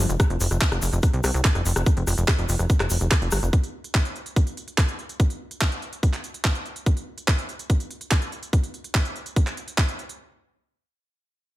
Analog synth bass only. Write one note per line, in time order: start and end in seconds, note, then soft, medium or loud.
0.09 0.16 F1 medium
0.30 0.37 F1 medium
0.41 0.48 F1 loud
0.51 0.58 F1 medium
0.72 0.79 F1 medium
0.82 0.89 F1 loud
0.93 1.00 F1 medium
1.13 1.21 C2 medium
1.24 1.31 C2 loud
1.34 1.41 C2 medium
1.55 1.62 F1 medium
1.66 1.73 F1 loud
1.76 1.83 F1 medium
1.97 2.04 F1 medium
2.07 2.14 F1 loud
2.18 2.25 F1 medium
2.38 2.46 F1 medium
2.49 2.56 F1 loud
2.59 2.66 F1 medium
2.80 2.87 F1 medium
2.91 2.98 F1 medium
3.01 3.08 F1 medium
3.22 3.29 F1 medium
3.32 3.39 G1 loud
3.43 3.50 F1 medium